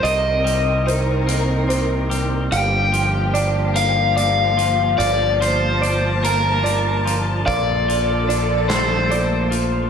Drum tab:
HH |xxxxxx|xxxxxx|xxxxxx|xxxxxx|
SD |------|------|------|---o--|
BD |------|------|------|o-----|